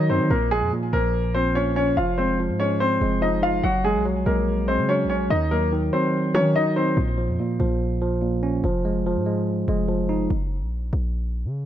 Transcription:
0.00 0.11 D#3 loud
0.00 0.33 D#3 loud
0.00 0.33 F#3 medium
0.09 0.21 F#2 loud
0.09 0.29 C4 medium
0.09 0.30 D#4 medium
0.09 0.28 C5 medium
0.20 0.30 D#3 loud
0.30 0.63 A#1 loud
0.30 0.71 A#2 medium
0.30 0.50 A#3 medium
0.30 0.49 A#4 medium
0.51 0.92 F3 medium
0.51 0.70 G#3 medium
0.51 0.70 G#4 loud
0.62 0.72 F2 loud
0.73 1.54 A#2 medium
0.93 1.93 A#1 loud
0.93 1.33 F3 medium
0.93 1.33 A#3 medium
0.93 1.32 A#4 medium
1.35 1.97 F3 medium
1.35 1.54 C4 medium
1.35 1.53 C5 medium
1.55 1.97 A#2 medium
1.55 1.75 C#4 medium
1.55 1.74 C#5 medium
1.76 1.97 C#4 medium
1.76 1.95 C#4 medium
1.76 1.95 C#5 medium
1.97 2.51 F1 loud
1.97 2.38 F3 medium
1.97 2.16 F4 medium
1.97 2.16 F5 medium
2.18 2.58 G#3 medium
2.18 2.37 C4 medium
2.18 2.37 C5 medium
2.40 3.21 F3 medium
2.49 2.99 G#2 loud
2.59 3.01 G#3 medium
2.59 2.79 C#4 medium
2.59 2.78 C#5 medium
2.80 3.20 C4 medium
2.80 3.20 C5 medium
3.01 3.61 F1 loud
3.01 3.64 G#3 medium
3.22 3.64 F3 medium
3.22 3.41 D#4 medium
3.22 3.41 D#5 medium
3.42 3.64 D#4 medium
3.42 3.62 F4 medium
3.42 3.62 F5 medium
3.63 3.96 F#1 loud
3.63 4.04 F#3 medium
3.63 3.83 F#4 medium
3.63 3.82 F#5 medium
3.84 4.25 G#3 medium
3.84 4.04 G#3 medium
3.84 4.03 G#4 medium
3.95 4.25 A#1 medium
4.05 4.88 F#3 medium
4.26 4.80 A#1 loud
4.26 4.67 G#3 medium
4.26 4.66 A#3 medium
4.26 4.65 A#4 medium
4.68 5.30 G#3 medium
4.68 4.87 C4 medium
4.68 4.87 C5 medium
4.78 5.06 C#3 loud
4.89 5.31 F#3 medium
4.89 5.08 C#4 medium
4.89 5.07 C#5 medium
5.04 5.29 A#1 medium
5.09 5.30 C#4 medium
5.09 5.29 C#4 medium
5.09 5.28 C#5 medium
5.30 5.90 D#2 loud
5.30 5.71 D#3 medium
5.30 5.50 D#4 medium
5.30 5.49 D#5 medium
5.51 5.92 F#3 medium
5.51 5.70 A#3 medium
5.51 5.70 A#4 medium
5.72 6.54 D#3 medium
5.93 6.33 F#3 medium
5.93 6.33 C4 medium
5.93 6.32 C5 medium
6.34 6.55 D#3 loud
6.34 6.97 F#3 medium
6.34 6.54 C#4 medium
6.34 6.53 C#5 medium
6.55 6.97 D#3 medium
6.55 6.75 D#4 medium
6.55 6.74 D#5 medium
6.76 6.95 C4 medium
6.76 6.97 D#4 medium
6.76 6.95 C5 medium
6.97 7.30 A#1 loud
6.97 7.38 A#2 medium
7.18 7.59 F3 medium
7.28 7.38 F2 loud
7.39 8.20 A#2 medium
7.60 8.60 A#1 loud
7.60 8.00 F3 medium
8.01 8.63 F3 medium
8.22 8.64 A#2 medium
8.43 8.64 C#4 medium
8.64 9.17 F1 loud
8.64 9.05 F3 medium
8.85 9.25 G#3 medium
9.07 9.87 F3 medium
9.16 9.65 G#2 loud
9.26 9.67 G#3 medium
9.68 10.28 F1 loud
9.68 10.31 G#3 medium
9.88 10.30 F3 medium
10.09 10.30 D#4 medium
10.30 10.63 F#1 loud
10.62 10.91 A#1 loud
10.93 11.46 A#1 loud
11.45 11.66 C#3 loud

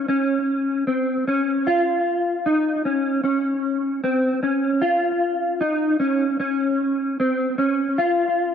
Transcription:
0.08 0.87 C#4 medium
0.87 1.27 C4 medium
1.28 1.67 C#4 medium
1.67 2.46 F4 medium
2.46 2.85 D#4 medium
2.85 3.22 C#4 medium
3.24 4.03 C#4 medium
4.04 4.42 C4 medium
4.43 4.82 C#4 medium
4.82 5.61 F4 medium
5.61 5.99 D#4 medium
6.00 6.38 C#4 medium
6.40 7.19 C#4 medium
7.20 7.58 C4 medium
7.58 7.98 C#4 medium
7.98 8.55 F4 medium

